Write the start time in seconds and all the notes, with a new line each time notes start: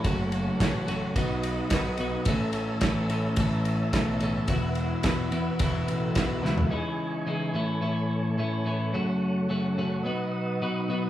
Already playing: A4 C#6
0.03 F#1 F#2 C#3 F#3 A3 C#4 F#4 C#5 F#5, kick, ride
0.32 ride
0.59 A1 F#2 C#3 F#3 A3 C#4 F#4, kick, snare, ride
0.87 F#2 C#3 F#3 A3 C#4 F#4, ride
1.16 B1 B2 F#3 B3 D#4 F#4 B4 D#5 D#6, kick, ride
1.43 ride
1.70 B1 B2 F#3 B3 D#4 F#4, kick, snare, ride
1.97 B2 F#3 B3 D#4 F#4, ride
2.25 A1 A2 E3 A3 C#4 A4 C#5 E5 A5 E6, kick, ride
2.53 ride
2.81 A1 A2 E3 A3 C#4 A4, kick, snare, ride
3.09 A2 E3 A3 C#4 A4, ride
3.36 A1 A2 E3 A3 C#4 A4, kick, ride
3.65 ride
3.93 B1 A2 E3 A3 C#4 A4, kick, snare, ride
4.20 A2 E3 A3 C#4 A4, ride
4.47 E1 E2 B2 E3 B3 E4 F#4 B4 E5 F#5, kick, ride
4.75 ride
5.03 E2 B2 E3 B3 E4 F#4, kick, snare, ride
5.31 E2 B2 E3 B3 E4 F#4, ride
5.59 E1 E2 B2 E3 B3 E4 F#4, kick, ride
5.88 A1, ride
6.15 B1 E2 B2 E3 B3 E4 F#4, kick, snare, ride
6.43 C#2 E2 B2 E3 B3 E4 F#4, snare
6.58 floor tom
6.70 C#3 E3 G#3 D#4 E4 G#4 D#5 G#5 C#6
7.26 C#3 E3 G#3 D#4 E4
7.54 A2 E3 A3 C#4 E4 A4 C#5
7.81 A2 E3 A3 C#4 E4
8.38 A2 E3 A3 C#4 E4
8.65 A2 E3 A3 C#4 E4
8.93 F#2 C#3 F#3 A3 C#4 F#4 F#5
9.49 F#2 C#3 F#3 A3 C#4 F#4
9.77 F#2 C#3 F#3 A3 C#4 F#4
10.03 B2 F#3 B3 D#4 F#4 B4 D#5 D#6
10.62 B2 F#3 B3 D#4 F#4
10.88 B2 F#3 B3 D#4 F#4